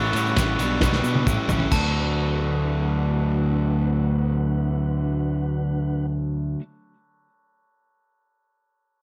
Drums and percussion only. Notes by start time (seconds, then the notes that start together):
0.13 ride, shaker
0.26 shaker
0.36 kick, snare, ride, shaker
0.59 ride, shaker
0.81 kick, snare, shaker
0.93 snare, shaker
1.04 shaker
1.15 high tom
1.27 kick, mid tom, shaker
1.49 floor tom, shaker
1.60 floor tom
1.72 kick, crash, shaker